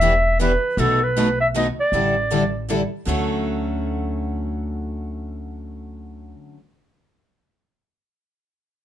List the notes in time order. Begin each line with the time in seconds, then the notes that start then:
Already playing: E1 E5
0.01 E3 G3 B3 D4 E4 G4 B4
0.40 E3 G3 B3 D4 E4 G4 B4
0.77 B1 B2 F#3 A3 D#4 F#4 A4 B4
1.03 B4
1.17 B2 F#3 A3 D#4 F#4 B4
1.41 E5
1.54 B2 F#3 A3 D#4 F#4 B4 D#5
1.80 D5
1.92 A1 D3 G3 D4 E4 A4
2.30 D3 G3 D4 E4 A4
2.69 D3 G3 D4 E4 A4
3.05 D2 D3 F#3 A3 C#4 F#4 A4